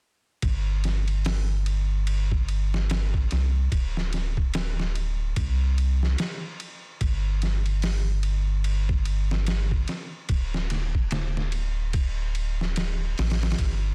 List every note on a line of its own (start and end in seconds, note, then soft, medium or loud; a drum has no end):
0.42 3.28 G1 medium
0.42 kick medium
0.42 ride medium
0.84 snare soft
0.84 ride medium
1.08 ride soft
1.25 snare loud
1.25 open hi-hat medium
1.66 ride medium
2.07 ride medium
2.32 kick medium
2.49 ride medium
2.74 snare soft
2.90 snare loud
2.90 ride medium
3.14 kick medium
3.31 3.68 C2 medium
3.31 snare soft
3.31 ride medium
3.72 5.33 D1 medium
3.72 kick medium
3.72 ride medium
3.97 snare soft
4.13 snare soft
4.13 ride medium
4.37 kick medium
4.54 snare loud
4.54 ride medium
4.80 snare soft
4.95 ride medium
5.36 6.15 C2 medium
5.36 kick medium
5.36 ride medium
5.78 ride medium
6.03 snare soft
6.18 snare loud
6.18 ride medium
6.60 ride medium
7.01 9.85 G1 medium
7.01 kick medium
7.01 ride medium
7.42 snare soft
7.42 ride medium
7.66 ride soft
7.82 snare loud
7.82 open hi-hat medium
8.23 ride medium
8.64 ride medium
8.89 kick medium
9.05 ride medium
9.31 snare medium
9.47 snare loud
9.47 ride medium
9.71 kick medium
9.88 snare soft
9.88 ride medium
10.29 13.14 D1 medium
10.29 kick medium
10.29 ride medium
10.54 snare soft
10.70 snare soft
10.70 ride medium
10.95 kick medium
11.11 snare loud
11.11 ride medium
11.37 snare soft
11.52 ride medium
11.93 kick loud
11.93 ride medium
12.35 ride medium
12.61 snare soft
12.76 snare loud
12.76 ride medium
13.18 13.55 A1 medium
13.18 snare medium
13.18 open hi-hat medium
13.30 snare medium
13.30 open hi-hat medium
13.42 snare medium
13.42 open hi-hat medium
13.50 snare medium
13.50 open hi-hat medium
13.58 13.95 G1 medium
13.58 kick medium
13.58 ride medium